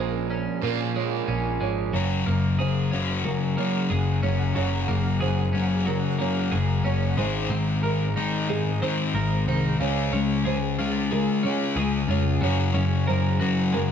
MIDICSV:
0, 0, Header, 1, 7, 480
1, 0, Start_track
1, 0, Tempo, 655738
1, 1417, Time_signature, 4, 2, 24, 8
1, 10187, End_track
2, 0, Start_track
2, 0, Title_t, "Ambient pad"
2, 0, Program_c, 0, 92
2, 0, Note_on_c, 0, 61, 80
2, 0, Note_on_c, 0, 70, 68
2, 0, Note_on_c, 0, 77, 67
2, 0, Note_on_c, 0, 80, 80
2, 1393, Note_off_c, 0, 80, 0
2, 1394, Note_off_c, 0, 70, 0
2, 1394, Note_off_c, 0, 77, 0
2, 1395, Note_off_c, 0, 61, 0
2, 1416, Note_on_c, 0, 61, 68
2, 1419, Note_on_c, 0, 82, 85
2, 1422, Note_on_c, 0, 78, 73
2, 1425, Note_on_c, 0, 68, 71
2, 5229, Note_off_c, 0, 61, 0
2, 5232, Note_off_c, 0, 78, 0
2, 5234, Note_off_c, 0, 68, 0
2, 5248, Note_on_c, 0, 72, 69
2, 5253, Note_on_c, 0, 75, 72
2, 5255, Note_on_c, 0, 68, 75
2, 7150, Note_off_c, 0, 82, 0
2, 7154, Note_off_c, 0, 72, 0
2, 7156, Note_off_c, 0, 75, 0
2, 7188, Note_on_c, 0, 80, 89
2, 7191, Note_on_c, 0, 61, 73
2, 7198, Note_on_c, 0, 77, 68
2, 9082, Note_off_c, 0, 80, 0
2, 9087, Note_off_c, 0, 77, 0
2, 9107, Note_on_c, 0, 82, 88
2, 9110, Note_on_c, 0, 78, 74
2, 10187, Note_off_c, 0, 61, 0
2, 10187, Note_off_c, 0, 68, 0
2, 10187, Note_off_c, 0, 78, 0
2, 10187, Note_off_c, 0, 82, 0
2, 10187, End_track
3, 0, Start_track
3, 0, Title_t, "Felt piano"
3, 0, Program_c, 1, 0
3, 0, Note_on_c, 1, 72, 64
3, 461, Note_off_c, 1, 72, 0
3, 462, Note_on_c, 1, 70, 70
3, 700, Note_off_c, 1, 70, 0
3, 703, Note_on_c, 1, 73, 64
3, 1173, Note_off_c, 1, 73, 0
3, 1183, Note_on_c, 1, 73, 62
3, 1411, Note_off_c, 1, 73, 0
3, 1422, Note_on_c, 1, 73, 66
3, 1900, Note_off_c, 1, 73, 0
3, 1900, Note_on_c, 1, 72, 62
3, 2379, Note_off_c, 1, 72, 0
3, 2381, Note_on_c, 1, 70, 67
3, 2620, Note_off_c, 1, 70, 0
3, 2624, Note_on_c, 1, 73, 60
3, 3089, Note_off_c, 1, 73, 0
3, 3100, Note_on_c, 1, 73, 58
3, 3334, Note_off_c, 1, 73, 0
3, 3345, Note_on_c, 1, 73, 66
3, 3818, Note_on_c, 1, 72, 65
3, 3822, Note_off_c, 1, 73, 0
3, 4299, Note_off_c, 1, 72, 0
3, 4303, Note_on_c, 1, 70, 73
3, 4541, Note_off_c, 1, 70, 0
3, 4543, Note_on_c, 1, 73, 71
3, 5009, Note_off_c, 1, 73, 0
3, 5020, Note_on_c, 1, 73, 66
3, 5258, Note_on_c, 1, 72, 70
3, 5260, Note_off_c, 1, 73, 0
3, 5738, Note_off_c, 1, 72, 0
3, 5739, Note_on_c, 1, 70, 76
3, 6218, Note_on_c, 1, 68, 77
3, 6219, Note_off_c, 1, 70, 0
3, 6458, Note_off_c, 1, 68, 0
3, 6460, Note_on_c, 1, 72, 65
3, 6927, Note_off_c, 1, 72, 0
3, 6938, Note_on_c, 1, 72, 67
3, 7178, Note_off_c, 1, 72, 0
3, 7185, Note_on_c, 1, 73, 79
3, 7659, Note_on_c, 1, 72, 71
3, 7662, Note_off_c, 1, 73, 0
3, 8138, Note_off_c, 1, 72, 0
3, 8141, Note_on_c, 1, 70, 80
3, 8379, Note_off_c, 1, 70, 0
3, 8379, Note_on_c, 1, 73, 64
3, 8848, Note_off_c, 1, 73, 0
3, 8859, Note_on_c, 1, 73, 64
3, 9087, Note_off_c, 1, 73, 0
3, 9098, Note_on_c, 1, 73, 72
3, 9571, Note_on_c, 1, 72, 71
3, 9576, Note_off_c, 1, 73, 0
3, 10052, Note_off_c, 1, 72, 0
3, 10056, Note_on_c, 1, 70, 79
3, 10187, Note_off_c, 1, 70, 0
3, 10187, End_track
4, 0, Start_track
4, 0, Title_t, "Clean electric guitar"
4, 0, Program_c, 2, 27
4, 0, Note_on_c, 2, 46, 61
4, 0, Note_on_c, 2, 56, 58
4, 0, Note_on_c, 2, 61, 57
4, 214, Note_off_c, 2, 61, 0
4, 222, Note_on_c, 2, 61, 51
4, 463, Note_on_c, 2, 53, 61
4, 694, Note_off_c, 2, 56, 0
4, 701, Note_off_c, 2, 46, 0
4, 703, Note_on_c, 2, 56, 59
4, 929, Note_off_c, 2, 61, 0
4, 937, Note_on_c, 2, 61, 57
4, 1166, Note_off_c, 2, 56, 0
4, 1175, Note_on_c, 2, 56, 58
4, 1412, Note_off_c, 2, 53, 0
4, 1415, Note_on_c, 2, 54, 64
4, 1416, Note_off_c, 2, 56, 0
4, 1418, Note_off_c, 2, 61, 0
4, 1657, Note_on_c, 2, 58, 51
4, 1893, Note_on_c, 2, 68, 60
4, 2133, Note_on_c, 2, 61, 51
4, 2369, Note_off_c, 2, 54, 0
4, 2378, Note_on_c, 2, 54, 57
4, 2611, Note_off_c, 2, 58, 0
4, 2614, Note_on_c, 2, 58, 58
4, 2852, Note_off_c, 2, 68, 0
4, 2855, Note_on_c, 2, 68, 61
4, 3085, Note_off_c, 2, 61, 0
4, 3093, Note_on_c, 2, 61, 54
4, 3323, Note_off_c, 2, 54, 0
4, 3332, Note_on_c, 2, 54, 61
4, 3570, Note_off_c, 2, 58, 0
4, 3573, Note_on_c, 2, 58, 55
4, 3806, Note_off_c, 2, 68, 0
4, 3809, Note_on_c, 2, 68, 67
4, 4037, Note_off_c, 2, 61, 0
4, 4046, Note_on_c, 2, 61, 49
4, 4280, Note_off_c, 2, 54, 0
4, 4289, Note_on_c, 2, 54, 59
4, 4519, Note_off_c, 2, 58, 0
4, 4528, Note_on_c, 2, 58, 60
4, 4766, Note_off_c, 2, 68, 0
4, 4769, Note_on_c, 2, 68, 63
4, 5001, Note_off_c, 2, 61, 0
4, 5010, Note_on_c, 2, 61, 59
4, 5248, Note_off_c, 2, 54, 0
4, 5251, Note_on_c, 2, 56, 69
4, 5254, Note_off_c, 2, 58, 0
4, 5254, Note_off_c, 2, 61, 0
4, 5491, Note_on_c, 2, 60, 57
4, 5729, Note_off_c, 2, 68, 0
4, 5732, Note_on_c, 2, 70, 63
4, 5973, Note_on_c, 2, 63, 56
4, 6213, Note_off_c, 2, 56, 0
4, 6216, Note_on_c, 2, 56, 65
4, 6448, Note_off_c, 2, 60, 0
4, 6457, Note_on_c, 2, 60, 65
4, 6686, Note_off_c, 2, 70, 0
4, 6695, Note_on_c, 2, 70, 70
4, 6932, Note_off_c, 2, 63, 0
4, 6941, Note_on_c, 2, 63, 57
4, 7174, Note_on_c, 2, 49, 66
4, 7176, Note_off_c, 2, 70, 0
4, 7178, Note_off_c, 2, 60, 0
4, 7180, Note_off_c, 2, 63, 0
4, 7412, Note_on_c, 2, 61, 62
4, 7650, Note_on_c, 2, 68, 67
4, 7895, Note_on_c, 2, 65, 60
4, 8129, Note_off_c, 2, 56, 0
4, 8132, Note_on_c, 2, 56, 63
4, 8364, Note_off_c, 2, 61, 0
4, 8367, Note_on_c, 2, 61, 61
4, 8375, Note_off_c, 2, 49, 0
4, 8608, Note_off_c, 2, 68, 0
4, 8611, Note_on_c, 2, 68, 66
4, 8838, Note_off_c, 2, 65, 0
4, 8846, Note_on_c, 2, 65, 56
4, 9087, Note_on_c, 2, 54, 67
4, 9091, Note_off_c, 2, 65, 0
4, 9109, Note_off_c, 2, 56, 0
4, 9109, Note_off_c, 2, 68, 0
4, 9322, Note_off_c, 2, 61, 0
4, 9325, Note_on_c, 2, 61, 58
4, 9570, Note_on_c, 2, 70, 66
4, 9807, Note_on_c, 2, 66, 54
4, 10048, Note_on_c, 2, 56, 66
4, 10187, Note_off_c, 2, 54, 0
4, 10187, Note_off_c, 2, 56, 0
4, 10187, Note_off_c, 2, 61, 0
4, 10187, Note_off_c, 2, 66, 0
4, 10187, Note_off_c, 2, 70, 0
4, 10187, End_track
5, 0, Start_track
5, 0, Title_t, "Overdriven electric guitar"
5, 0, Program_c, 3, 29
5, 0, Note_on_c, 3, 46, 78
5, 0, Note_on_c, 3, 53, 83
5, 0, Note_on_c, 3, 58, 83
5, 438, Note_off_c, 3, 46, 0
5, 444, Note_off_c, 3, 53, 0
5, 448, Note_off_c, 3, 58, 0
5, 451, Note_on_c, 3, 46, 66
5, 463, Note_on_c, 3, 53, 69
5, 473, Note_on_c, 3, 58, 75
5, 1400, Note_off_c, 3, 46, 0
5, 1406, Note_off_c, 3, 53, 0
5, 1411, Note_off_c, 3, 58, 0
5, 10187, End_track
6, 0, Start_track
6, 0, Title_t, "Distorted electric guitar"
6, 0, Program_c, 4, 30
6, 1421, Note_on_c, 4, 42, 70
6, 1426, Note_on_c, 4, 49, 66
6, 1427, Note_on_c, 4, 54, 78
6, 1645, Note_off_c, 4, 42, 0
6, 1647, Note_off_c, 4, 49, 0
6, 1648, Note_off_c, 4, 54, 0
6, 1661, Note_on_c, 4, 42, 59
6, 1664, Note_on_c, 4, 49, 67
6, 1875, Note_off_c, 4, 42, 0
6, 1877, Note_off_c, 4, 49, 0
6, 1902, Note_on_c, 4, 42, 62
6, 1905, Note_on_c, 4, 49, 69
6, 2116, Note_off_c, 4, 42, 0
6, 2118, Note_off_c, 4, 49, 0
6, 2141, Note_on_c, 4, 42, 70
6, 2147, Note_on_c, 4, 49, 70
6, 2147, Note_on_c, 4, 54, 79
6, 2365, Note_off_c, 4, 42, 0
6, 2368, Note_off_c, 4, 49, 0
6, 2368, Note_off_c, 4, 54, 0
6, 2383, Note_on_c, 4, 49, 60
6, 2384, Note_on_c, 4, 42, 65
6, 2597, Note_off_c, 4, 42, 0
6, 2597, Note_off_c, 4, 49, 0
6, 2620, Note_on_c, 4, 42, 73
6, 2624, Note_on_c, 4, 54, 77
6, 2626, Note_on_c, 4, 49, 75
6, 2845, Note_off_c, 4, 42, 0
6, 2847, Note_off_c, 4, 54, 0
6, 2848, Note_off_c, 4, 49, 0
6, 2863, Note_on_c, 4, 42, 58
6, 2864, Note_on_c, 4, 49, 70
6, 3077, Note_off_c, 4, 42, 0
6, 3077, Note_off_c, 4, 49, 0
6, 3098, Note_on_c, 4, 42, 54
6, 3104, Note_on_c, 4, 49, 63
6, 3314, Note_off_c, 4, 42, 0
6, 3317, Note_off_c, 4, 49, 0
6, 3336, Note_on_c, 4, 42, 65
6, 3338, Note_on_c, 4, 49, 76
6, 3342, Note_on_c, 4, 54, 78
6, 3563, Note_off_c, 4, 42, 0
6, 3564, Note_off_c, 4, 49, 0
6, 3566, Note_off_c, 4, 54, 0
6, 3579, Note_on_c, 4, 42, 61
6, 3581, Note_on_c, 4, 49, 66
6, 3795, Note_off_c, 4, 42, 0
6, 3796, Note_off_c, 4, 49, 0
6, 3820, Note_on_c, 4, 42, 62
6, 3822, Note_on_c, 4, 49, 69
6, 4035, Note_off_c, 4, 42, 0
6, 4037, Note_off_c, 4, 49, 0
6, 4062, Note_on_c, 4, 42, 72
6, 4069, Note_on_c, 4, 49, 79
6, 4071, Note_on_c, 4, 54, 75
6, 4286, Note_off_c, 4, 42, 0
6, 4290, Note_off_c, 4, 49, 0
6, 4290, Note_off_c, 4, 54, 0
6, 4301, Note_on_c, 4, 42, 60
6, 4302, Note_on_c, 4, 49, 66
6, 4516, Note_off_c, 4, 42, 0
6, 4517, Note_off_c, 4, 49, 0
6, 4536, Note_on_c, 4, 42, 74
6, 4543, Note_on_c, 4, 49, 76
6, 4544, Note_on_c, 4, 54, 83
6, 4763, Note_off_c, 4, 42, 0
6, 4767, Note_off_c, 4, 49, 0
6, 4767, Note_off_c, 4, 54, 0
6, 4777, Note_on_c, 4, 42, 65
6, 4783, Note_on_c, 4, 49, 67
6, 4994, Note_off_c, 4, 42, 0
6, 4997, Note_off_c, 4, 49, 0
6, 5016, Note_on_c, 4, 42, 64
6, 5020, Note_on_c, 4, 49, 69
6, 5234, Note_off_c, 4, 42, 0
6, 5235, Note_off_c, 4, 49, 0
6, 5251, Note_on_c, 4, 44, 78
6, 5259, Note_on_c, 4, 51, 72
6, 5259, Note_on_c, 4, 56, 86
6, 5480, Note_off_c, 4, 44, 0
6, 5485, Note_off_c, 4, 51, 0
6, 5485, Note_off_c, 4, 56, 0
6, 5502, Note_on_c, 4, 44, 60
6, 5503, Note_on_c, 4, 51, 70
6, 5716, Note_off_c, 4, 44, 0
6, 5717, Note_off_c, 4, 51, 0
6, 5735, Note_on_c, 4, 44, 55
6, 5738, Note_on_c, 4, 51, 68
6, 5953, Note_off_c, 4, 44, 0
6, 5955, Note_off_c, 4, 51, 0
6, 5979, Note_on_c, 4, 44, 75
6, 5985, Note_on_c, 4, 51, 78
6, 5989, Note_on_c, 4, 56, 84
6, 6205, Note_off_c, 4, 44, 0
6, 6207, Note_off_c, 4, 51, 0
6, 6209, Note_off_c, 4, 56, 0
6, 6217, Note_on_c, 4, 44, 70
6, 6221, Note_on_c, 4, 51, 71
6, 6434, Note_off_c, 4, 44, 0
6, 6436, Note_off_c, 4, 51, 0
6, 6459, Note_on_c, 4, 44, 80
6, 6462, Note_on_c, 4, 51, 89
6, 6464, Note_on_c, 4, 56, 96
6, 6684, Note_off_c, 4, 44, 0
6, 6686, Note_off_c, 4, 51, 0
6, 6687, Note_off_c, 4, 56, 0
6, 6700, Note_on_c, 4, 44, 64
6, 6704, Note_on_c, 4, 51, 72
6, 6915, Note_off_c, 4, 44, 0
6, 6917, Note_off_c, 4, 51, 0
6, 6939, Note_on_c, 4, 44, 60
6, 6943, Note_on_c, 4, 51, 69
6, 7155, Note_off_c, 4, 44, 0
6, 7157, Note_off_c, 4, 51, 0
6, 7178, Note_on_c, 4, 49, 73
6, 7183, Note_on_c, 4, 56, 77
6, 7188, Note_on_c, 4, 61, 83
6, 7404, Note_off_c, 4, 49, 0
6, 7406, Note_off_c, 4, 56, 0
6, 7409, Note_off_c, 4, 61, 0
6, 7419, Note_on_c, 4, 49, 61
6, 7424, Note_on_c, 4, 56, 71
6, 7634, Note_off_c, 4, 49, 0
6, 7637, Note_off_c, 4, 56, 0
6, 7658, Note_on_c, 4, 49, 62
6, 7659, Note_on_c, 4, 56, 66
6, 7874, Note_off_c, 4, 49, 0
6, 7874, Note_off_c, 4, 56, 0
6, 7895, Note_on_c, 4, 49, 83
6, 7899, Note_on_c, 4, 56, 74
6, 7903, Note_on_c, 4, 61, 84
6, 8122, Note_off_c, 4, 49, 0
6, 8124, Note_off_c, 4, 56, 0
6, 8126, Note_off_c, 4, 61, 0
6, 8142, Note_on_c, 4, 49, 67
6, 8144, Note_on_c, 4, 56, 67
6, 8355, Note_off_c, 4, 49, 0
6, 8357, Note_off_c, 4, 56, 0
6, 8379, Note_on_c, 4, 49, 72
6, 8382, Note_on_c, 4, 56, 73
6, 8386, Note_on_c, 4, 61, 83
6, 8603, Note_off_c, 4, 49, 0
6, 8605, Note_off_c, 4, 56, 0
6, 8607, Note_off_c, 4, 61, 0
6, 8618, Note_on_c, 4, 49, 68
6, 8620, Note_on_c, 4, 56, 64
6, 8833, Note_off_c, 4, 49, 0
6, 8834, Note_off_c, 4, 56, 0
6, 8860, Note_on_c, 4, 49, 63
6, 8864, Note_on_c, 4, 56, 68
6, 9074, Note_off_c, 4, 49, 0
6, 9076, Note_off_c, 4, 56, 0
6, 9100, Note_on_c, 4, 42, 68
6, 9105, Note_on_c, 4, 54, 89
6, 9106, Note_on_c, 4, 49, 80
6, 9323, Note_off_c, 4, 42, 0
6, 9326, Note_off_c, 4, 49, 0
6, 9326, Note_off_c, 4, 54, 0
6, 9337, Note_on_c, 4, 42, 69
6, 9341, Note_on_c, 4, 49, 69
6, 9552, Note_off_c, 4, 42, 0
6, 9554, Note_off_c, 4, 49, 0
6, 9582, Note_on_c, 4, 42, 73
6, 9586, Note_on_c, 4, 49, 74
6, 9794, Note_off_c, 4, 42, 0
6, 9796, Note_off_c, 4, 49, 0
6, 9816, Note_on_c, 4, 42, 75
6, 9820, Note_on_c, 4, 49, 86
6, 9823, Note_on_c, 4, 54, 87
6, 10040, Note_off_c, 4, 42, 0
6, 10042, Note_off_c, 4, 49, 0
6, 10044, Note_off_c, 4, 54, 0
6, 10059, Note_on_c, 4, 42, 65
6, 10060, Note_on_c, 4, 49, 66
6, 10187, Note_off_c, 4, 42, 0
6, 10187, Note_off_c, 4, 49, 0
6, 10187, End_track
7, 0, Start_track
7, 0, Title_t, "Picked electric bass"
7, 0, Program_c, 5, 34
7, 0, Note_on_c, 5, 34, 81
7, 341, Note_off_c, 5, 34, 0
7, 461, Note_on_c, 5, 46, 73
7, 881, Note_off_c, 5, 46, 0
7, 939, Note_on_c, 5, 34, 70
7, 1154, Note_off_c, 5, 34, 0
7, 1178, Note_on_c, 5, 32, 65
7, 1394, Note_off_c, 5, 32, 0
7, 1415, Note_on_c, 5, 30, 78
7, 1627, Note_off_c, 5, 30, 0
7, 1657, Note_on_c, 5, 30, 69
7, 2501, Note_off_c, 5, 30, 0
7, 2858, Note_on_c, 5, 30, 76
7, 3069, Note_off_c, 5, 30, 0
7, 3095, Note_on_c, 5, 30, 67
7, 3307, Note_off_c, 5, 30, 0
7, 3345, Note_on_c, 5, 30, 78
7, 3553, Note_off_c, 5, 30, 0
7, 3578, Note_on_c, 5, 30, 70
7, 4422, Note_off_c, 5, 30, 0
7, 4773, Note_on_c, 5, 30, 81
7, 4986, Note_off_c, 5, 30, 0
7, 5010, Note_on_c, 5, 30, 72
7, 5225, Note_off_c, 5, 30, 0
7, 5253, Note_on_c, 5, 32, 91
7, 5467, Note_off_c, 5, 32, 0
7, 5487, Note_on_c, 5, 32, 81
7, 6335, Note_off_c, 5, 32, 0
7, 6690, Note_on_c, 5, 32, 82
7, 6905, Note_off_c, 5, 32, 0
7, 6928, Note_on_c, 5, 36, 78
7, 7143, Note_off_c, 5, 36, 0
7, 7173, Note_on_c, 5, 37, 82
7, 7386, Note_off_c, 5, 37, 0
7, 7405, Note_on_c, 5, 37, 75
7, 8253, Note_off_c, 5, 37, 0
7, 8607, Note_on_c, 5, 37, 77
7, 8822, Note_off_c, 5, 37, 0
7, 8843, Note_on_c, 5, 41, 77
7, 9059, Note_off_c, 5, 41, 0
7, 9088, Note_on_c, 5, 42, 91
7, 9302, Note_off_c, 5, 42, 0
7, 9326, Note_on_c, 5, 42, 80
7, 10172, Note_off_c, 5, 42, 0
7, 10187, End_track
0, 0, End_of_file